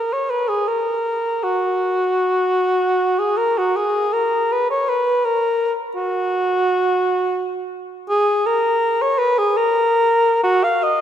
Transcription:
Already playing: A#4
0.13 C#5
0.30 B4
0.49 G#4
0.68 A#4
1.43 F#4
3.19 G#4
3.38 A#4
3.58 F#4
3.76 G#4
4.13 A#4
4.52 B4
4.70 C#5
4.89 B4
5.25 A#4
5.96 F#4
8.09 G#4
8.46 A#4
9.02 C#5
9.19 B4
9.38 G#4
9.57 A#4
10.44 F#4
10.64 F5
10.83 D#5

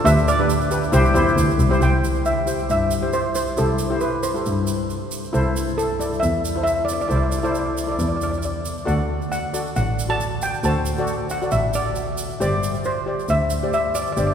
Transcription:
0.05 D2 D4 G4 B4 E5, shaker
0.19 shaker
0.28 D5, shaker
0.39 D4 G4 B4
0.50 shaker
0.61 shaker
0.70 D4 G4 B4, shaker
0.83 shaker
0.92 C2 E4 G4 C5, shaker
1.05 shaker
1.14 E2 E4 G4 C5, shaker
1.28 shaker
1.37 D2, shaker
1.51 shaker
1.58 C2, shaker
1.70 E4 G4 C5, shaker
1.79 C2 E4 G4 C5 G5, shaker
2.04 shaker
2.15 shaker
2.25 E5, shaker
2.46 E4 G4 C5, shaker
2.59 shaker
2.70 G2 E5, shaker
2.91 shaker
3.02 E4 G4 C5
3.13 C5, shaker
3.35 C5, shaker
3.47 shaker
3.57 C2 E4 G4 A4 C5, shaker
3.79 shaker
3.90 E4 G4 C5
4.01 B4, shaker
4.23 C5, shaker
4.34 E4 G4 A4, shaker
4.46 G2, shaker
4.67 shaker
4.90 shaker
5.11 shaker
5.24 shaker
5.33 C2 E4 A4 C5, shaker
5.56 shaker
5.68 shaker
5.78 A4, shaker
6.00 E4 A4 D5, shaker
6.13 shaker
6.20 E2 E5, shaker
6.45 shaker
6.55 E4 A4 C5
6.63 E5, shaker
6.85 D5, shaker
6.93 D5
7.01 D5, shaker
7.08 C2 E4 A4 C5 D5, shaker
7.16 D5
7.23 D5
7.31 D5, shaker
7.39 D5
7.43 E4 A4 C5 D5, shaker
7.51 D5, shaker
7.60 D5
7.66 D5
7.75 D5, shaker
7.84 E4 A4 D5
7.88 D5
7.99 E2 D5, shaker
8.09 D5
8.16 D5
8.21 D5, shaker
8.32 D5, shaker
8.38 D5
8.42 D5, shaker
8.65 shaker
8.78 shaker
8.85 D2 F#4 A4 D5 F#5, shaker
9.22 shaker
9.32 F#5, shaker
9.53 F#4 A4 D5, shaker
9.67 shaker
9.76 A1 F#5, shaker
9.99 shaker
10.09 F#4 A4 D5 A5
10.20 shaker
10.42 G5, shaker
10.54 shaker
10.63 D2 F#4 A4 C5 A5, shaker
10.86 shaker
10.98 F#4 A4 D5, shaker
11.07 shaker
11.30 F#5, shaker
11.42 F#4 A4 D5, shaker
11.51 A1 E5, shaker
11.73 D5, shaker
11.95 shaker
12.17 shaker
12.31 shaker
12.40 G1 G4 C5 D5, shaker
12.63 shaker
12.75 shaker
12.84 C5, shaker
13.06 G4 C5 D5
13.20 shaker
13.28 D2 E5, shaker
13.50 shaker
13.63 G4 C5 D5
13.73 E5, shaker
13.95 D5, shaker
14.02 D5
14.07 shaker
14.12 D5
14.17 G1 G4 C5 D5, shaker
14.27 D5

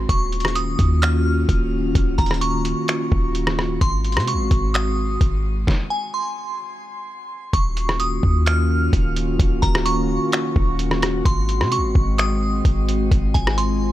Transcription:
Already playing: F#4
0.09 D#1 D#3 A#3 C#4 F4 C#6, kick, closed hi-hat
0.32 closed hi-hat
0.40 closed hi-hat
0.45 cross-stick, closed hi-hat
0.55 D#6, closed hi-hat
0.79 D#2, kick, closed hi-hat
1.02 F6, finger snap, closed hi-hat
1.49 D#1, kick, closed hi-hat
1.95 D#1, kick, closed hi-hat
2.18 D#1 A#5, kick, closed hi-hat
2.26 closed hi-hat
2.31 cross-stick, closed hi-hat
2.41 C#6, closed hi-hat
2.65 closed hi-hat
2.88 finger snap, closed hi-hat
3.12 D#1, kick
3.35 closed hi-hat
3.47 cross-stick
3.59 cross-stick
3.81 G#1 G#3 C4 F#4 C6, kick, closed hi-hat
4.04 closed hi-hat
4.12 C3, closed hi-hat
4.17 cross-stick, closed hi-hat
4.27 C#6, closed hi-hat
4.34 G#1
4.51 G#1, kick, closed hi-hat
4.74 D#6, finger snap, closed hi-hat
5.21 G#1, kick, closed hi-hat
5.67 kick, snare
5.90 G#5
6.14 C6
7.53 D#1 D#3 A#3 C#4 F4 F#4 C#6, kick, closed hi-hat
7.77 closed hi-hat
7.89 cross-stick
8.00 D#6, closed hi-hat
8.23 D#2, kick
8.46 F6, finger snap, closed hi-hat
8.93 D#1, kick, closed hi-hat
9.16 closed hi-hat
9.39 D#1, kick, closed hi-hat
9.62 D#1 A#5, kick, closed hi-hat
9.75 cross-stick
9.86 C#6, closed hi-hat
10.32 finger snap, closed hi-hat
10.56 D#1, kick
10.79 closed hi-hat
10.91 cross-stick
11.02 cross-stick, closed hi-hat
11.25 G#1 G#3 C4 C6, kick, closed hi-hat
11.49 closed hi-hat
11.60 C3, cross-stick
11.72 C#6, closed hi-hat
11.78 G#1
11.95 G#1, kick
12.18 D#6, finger snap, closed hi-hat
12.65 G#1, kick, closed hi-hat
12.89 closed hi-hat
13.11 G#1 F4, kick, closed hi-hat
13.34 G#1 G#5, kick, closed hi-hat
13.47 cross-stick
13.58 C6, closed hi-hat

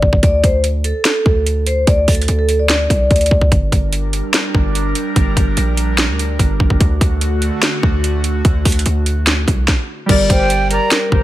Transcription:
Already playing: D5
0.02 G1, kick
0.13 G1, kick
0.23 D2 D5, kick, closed hi-hat
0.44 D2 C5, kick, closed hi-hat
0.64 closed hi-hat
0.84 A4, closed hi-hat
1.05 A4, snare, closed hi-hat
1.26 D2, kick
1.46 closed hi-hat
1.67 C5, closed hi-hat
1.87 D2 D5, kick, closed hi-hat
2.08 D2 A4, kick, closed hi-hat, open hi-hat
2.15 closed hi-hat
2.22 closed hi-hat
2.28 D2, closed hi-hat
2.39 A4
2.49 closed hi-hat
2.59 D5
2.69 D5, snare, closed hi-hat
2.90 C2, kick, closed hi-hat
3.11 D2, kick, closed hi-hat
3.16 closed hi-hat
3.21 closed hi-hat
3.26 closed hi-hat
3.31 D2, kick
3.41 kick
3.52 G1 G3 D4 A#4, kick, closed hi-hat
3.72 G1, kick, closed hi-hat
3.93 closed hi-hat
4.13 closed hi-hat
4.34 snare, closed hi-hat
4.55 G1, kick
4.75 closed hi-hat
4.95 closed hi-hat
5.16 G1, kick, closed hi-hat
5.37 G1, kick, closed hi-hat
5.57 A#1, closed hi-hat
5.77 closed hi-hat
5.98 snare, closed hi-hat
6.09 D2
6.19 closed hi-hat
6.39 G1, kick, closed hi-hat
6.60 G1, kick
6.70 G1, kick
6.80 D2 D3 A3 F#4, kick, closed hi-hat
7.01 D2, kick, closed hi-hat
7.21 closed hi-hat
7.42 closed hi-hat
7.63 snare, closed hi-hat
7.83 D2, kick
8.04 closed hi-hat
8.24 closed hi-hat
8.45 D2, kick, closed hi-hat
8.65 D2, kick, closed hi-hat, open hi-hat
8.72 closed hi-hat
8.79 closed hi-hat
8.86 D2, closed hi-hat
9.06 closed hi-hat
9.27 snare, closed hi-hat
9.48 C2, kick, closed hi-hat
9.68 kick, snare
10.06 G1 G3 G4 A#4 D5, kick, closed hi-hat, crash
10.11 D5
10.30 G1 C5 G5, kick, closed hi-hat
10.37 G3 G4 A#4
10.43 C5
10.50 closed hi-hat
10.69 G3 G4 A#4 A#5, closed hi-hat
10.74 D5
10.91 A#4, snare, closed hi-hat
11.09 G1 G3 G4 A#4, kick
11.15 C5

